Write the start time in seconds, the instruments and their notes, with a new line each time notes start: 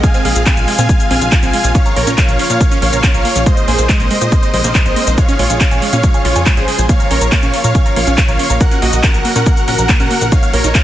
0.03 analog synth pad C3 F3 G#3 F4, synth pluck G#3, supersaw synth F5 G#5, kick, closed hi-hat, shaker
0.14 synth pluck C4, closed hi-hat, shaker
0.25 analog synth bass A#1, analog synth pad C3 F3 G#3 F4, synth pluck G#3, supersaw synth G#4 F5, open hi-hat
0.36 analog synth bass A#1, synth pluck G#5, shaker
0.46 analog synth pad C3 F3 G#3 F4, synth pluck C4, supersaw synth F5 G#5, kick, clap, closed hi-hat, shaker
0.57 analog synth bass A#1, analog synth pad C3 F3 G#3 F4, synth pluck G#5, closed hi-hat, shaker
0.68 synth pluck G#3, open hi-hat
0.79 analog synth bass A#2, analog synth pad C3 F3 G#3 F4, synth pluck C4, supersaw synth F5 G#5, closed hi-hat, shaker
0.89 analog synth pad C3 F3 G#3 F4, synth pluck G#3, kick, closed hi-hat, shaker
1.00 synth pluck G#5, closed hi-hat, shaker
1.11 analog synth bass A#1, analog synth pad C3 F3 G#3 F4, synth pluck C4, supersaw synth F5 G#5, open hi-hat
1.21 analog synth bass A#1, synth pluck G#5, closed hi-hat, shaker
1.32 analog synth pad C3 F3 G#3 F4, synth pluck G#3, kick, clap, closed hi-hat, shaker
1.43 analog synth bass A#1, analog synth pad C3 F3 G#3 F4, synth pluck C4, supersaw synth F5 G#5, closed hi-hat, shaker
1.53 synth pluck G#3, open hi-hat
1.64 analog synth bass A#1, analog synth pad C3 F3 G#3 F4, synth pluck G#5, closed hi-hat, shaker
1.75 analog synth pad C#3 F3 A#3 F4, synth pluck C#4, supersaw synth C#5 F5, kick, closed hi-hat, shaker
1.86 synth pluck A#5, closed hi-hat, shaker
1.96 analog synth bass A#1, analog synth pad C#3 F3 A#3 F4, synth pluck A#3, supersaw synth A#4 C#5, open hi-hat
2.07 analog synth bass A#1, synth pluck C#4, closed hi-hat, shaker
2.18 analog synth pad C#3 F3 A#3 F4, synth pluck A#3, supersaw synth C#5 F5, kick, clap, closed hi-hat, shaker
2.28 analog synth bass A#1, analog synth pad C#3 F3 A#3 F4, synth pluck A#5, closed hi-hat, shaker
2.39 synth pluck C#4, open hi-hat
2.50 analog synth bass A#2, analog synth pad C#3 F3 A#3 F4, supersaw synth C#5 F5, synth pluck A#5, closed hi-hat, shaker
2.61 analog synth pad C#3 F3 A#3 F4, synth pluck A#3, kick, closed hi-hat, shaker
2.71 synth pluck C#4, closed hi-hat, shaker
2.82 analog synth bass A#1, analog synth pad C#3 F3 A#3 F4, synth pluck A#3, supersaw synth C#5 F5, open hi-hat
2.93 analog synth bass A#1, synth pluck A#5, closed hi-hat, shaker
3.04 analog synth pad C#3 F3 A#3 F4, synth pluck C#4, kick, clap, closed hi-hat, shaker
3.14 analog synth bass A#1, analog synth pad C#3 F3 A#3 F4, supersaw synth C#5 F5, synth pluck A#5, closed hi-hat, shaker
3.25 synth pluck A#3, open hi-hat
3.36 analog synth bass A#1, analog synth pad C#3 F3 A#3 F4, synth pluck C#4, closed hi-hat, shaker
3.46 analog synth pad C3 G#3 A#3 D#4, synth pluck G#3, supersaw synth C5 D#5, kick, closed hi-hat, shaker
3.57 synth pluck C5, closed hi-hat, shaker
3.68 analog synth bass A#1, analog synth pad C3 G#3 A#3 D#4, synth pluck A#3, supersaw synth G#4 C5, open hi-hat
3.78 analog synth bass A#1, synth pluck C5, closed hi-hat, shaker
3.89 analog synth pad C3 G#3 A#3 D#4, synth pluck G#3, supersaw synth C5 D#5, kick, clap, closed hi-hat, shaker
4.00 analog synth bass A#1, analog synth pad C3 G#3 A#3 D#4, synth pluck A#3, closed hi-hat, shaker
4.11 synth pluck G#3, open hi-hat
4.21 analog synth bass A#2, analog synth pad C3 G#3 A#3 D#4, supersaw synth C5 D#5, synth pluck C5, shaker
4.32 analog synth pad C3 G#3 A#3 D#4, synth pluck A#3, kick, closed hi-hat, shaker
4.43 synth pluck C5, closed hi-hat, shaker
4.53 analog synth bass A#1, analog synth pad C3 G#3 A#3 D#4, synth pluck G#3, supersaw synth C5 D#5, open hi-hat
4.64 analog synth bass A#1, synth pluck A#3, closed hi-hat, shaker
4.75 analog synth pad C3 G#3 A#3 D#4, synth pluck G#3, kick, clap, closed hi-hat, shaker
4.86 analog synth bass A#1, analog synth pad C3 G#3 A#3 D#4, synth pluck C5, supersaw synth C5 D#5, closed hi-hat, shaker
4.96 synth pluck A#3, open hi-hat
5.07 analog synth bass A#1, analog synth pad C3 G#3 A#3 D#4, synth pluck C5, closed hi-hat, shaker
5.18 analog synth pad C#3 F3 G#3 F4, synth pluck G#3, supersaw synth C#5 F5, kick, closed hi-hat, shaker
5.29 synth pluck C#4, closed hi-hat, shaker
5.39 analog synth bass A#1, analog synth pad C#3 F3 G#3 F4, synth pluck G#3, supersaw synth F4 C#5, open hi-hat
5.50 analog synth bass A#1, synth pluck G#5, closed hi-hat, shaker
5.60 analog synth pad C#3 F3 G#3 F4, synth pluck C#4, supersaw synth C#5 F5, kick, clap, closed hi-hat, shaker
5.71 analog synth bass A#1, analog synth pad C#3 F3 G#3 F4, synth pluck G#5, closed hi-hat, shaker
5.82 synth pluck G#3, open hi-hat
5.93 analog synth bass A#2, analog synth pad C#3 F3 G#3 F4, synth pluck C#4, supersaw synth C#5 F5, closed hi-hat, shaker
6.04 analog synth pad C#3 F3 G#3 F4, synth pluck G#3, kick, closed hi-hat, shaker
6.14 synth pluck G#5, closed hi-hat, shaker
6.25 analog synth bass A#1, analog synth pad C#3 F3 G#3 F4, synth pluck C#4, supersaw synth F4 C#5, open hi-hat
6.36 analog synth bass F2, synth pluck G#5, closed hi-hat, shaker
6.46 analog synth pad C#3 F3 G#3 F4, synth pluck G#3, kick, clap, closed hi-hat, shaker
6.57 analog synth bass A#1, analog synth pad C#3 F3 G#3 F4, synth pluck C#4, supersaw synth G#4 C5, closed hi-hat, shaker
6.68 synth pluck G#3, open hi-hat
6.79 analog synth bass A#1, analog synth pad C#3 F3 G#3 F4, synth pluck G#5, closed hi-hat, shaker
6.89 analog synth pad C#3 F3 A#3 F4, synth pluck A#3, supersaw synth C#5 F5, kick, closed hi-hat, shaker
7.00 synth pluck A#5, closed hi-hat, shaker
7.11 analog synth bass A#1, analog synth pad C#3 F3 A#3 F4, synth pluck C#4, supersaw synth A#4 C#5, open hi-hat
7.21 analog synth bass A#1, synth pluck A#5, closed hi-hat, shaker
7.32 analog synth pad C#3 F3 A#3 F4, synth pluck A#3, supersaw synth C#5 F5, kick, clap, closed hi-hat, shaker
7.43 analog synth bass A#1, analog synth pad C#3 F3 A#3 F4, synth pluck C#4, closed hi-hat, shaker
7.54 synth pluck A#3, open hi-hat
7.64 analog synth bass A#2, analog synth pad C#3 F3 A#3 F4, supersaw synth C#5 F5, synth pluck A#5, closed hi-hat, shaker
7.75 analog synth pad C#3 F3 A#3 F4, synth pluck C#4, kick, closed hi-hat, shaker
7.86 synth pluck A#5, closed hi-hat, shaker
7.96 analog synth bass A#1, analog synth pad C#3 F3 A#3 F4, synth pluck A#3, supersaw synth C#5 F5, open hi-hat
8.07 analog synth bass A#1, synth pluck C#4, closed hi-hat, shaker
8.18 analog synth pad C#3 F3 A#3 F4, synth pluck A#3, kick, clap, closed hi-hat, shaker
8.29 analog synth bass A#1, analog synth pad C#3 F3 A#3 F4, supersaw synth C#5 F5, synth pluck A#5, closed hi-hat, shaker
8.39 synth pluck C#4, open hi-hat
8.50 analog synth bass A#1, analog synth pad C#3 F3 A#3 F4, synth pluck A#5, closed hi-hat, shaker
8.61 analog synth pad C#3 F#3 A#3 F#4, synth pluck A#3, supersaw synth A#4 F#5, kick, closed hi-hat, shaker
8.71 synth pluck C#4, closed hi-hat, shaker
8.82 analog synth bass A#1, analog synth pad C#3 F#3 A#3 F#4, synth pluck A#3, supersaw synth F#4 D#5, open hi-hat
8.93 analog synth bass A#1, synth pluck A#5, closed hi-hat, shaker
9.03 analog synth pad C#3 F#3 A#3 F#4, synth pluck C#4, supersaw synth A#4 F#5, kick, clap, closed hi-hat, shaker
9.14 analog synth bass A#1, analog synth pad C#3 F#3 A#3 F#4, synth pluck A#5, closed hi-hat, shaker
9.25 synth pluck A#3, open hi-hat
9.36 analog synth bass A#2, analog synth pad C#3 F#3 A#3 F#4, synth pluck C#4, supersaw synth A#4 F#5, closed hi-hat, shaker
9.46 analog synth pad C#3 F#3 A#3 F#4, synth pluck A#3, kick, closed hi-hat, shaker
9.57 synth pluck A#5, closed hi-hat, shaker
9.68 analog synth bass A#1, analog synth pad C#3 F#3 A#3 F#4, synth pluck C#4, supersaw synth A#4 F#5, open hi-hat
9.79 analog synth bass A#1, synth pluck A#5, closed hi-hat, shaker
9.89 analog synth pad C#3 F#3 A#3 F#4, synth pluck A#3, kick, clap, closed hi-hat, shaker
10.00 analog synth bass A#1, analog synth pad C#3 F#3 A#3 F#4, synth pluck C#4, supersaw synth A#4 F#5, closed hi-hat, shaker
10.11 synth pluck A#3, open hi-hat
10.21 analog synth bass A#1, analog synth pad C#3 F#3 A#3 F#4, synth pluck A#5, closed hi-hat, shaker
10.32 analog synth pad D#3 F#3 A#3 F4, synth pluck D#4, supersaw synth C#5 F5, kick, closed hi-hat, shaker
10.43 synth pluck F5, closed hi-hat, shaker
10.53 analog synth bass A#1, analog synth pad D#3 F#3 A#3 F4, synth pluck A#3, supersaw synth A#4 C#5, open hi-hat
10.64 analog synth bass A#1, synth pluck D#4, closed hi-hat, shaker
10.75 analog synth pad D#3 F#3 A#3 F4, synth pluck A#3, supersaw synth C#5 F5, kick, clap, closed hi-hat, shaker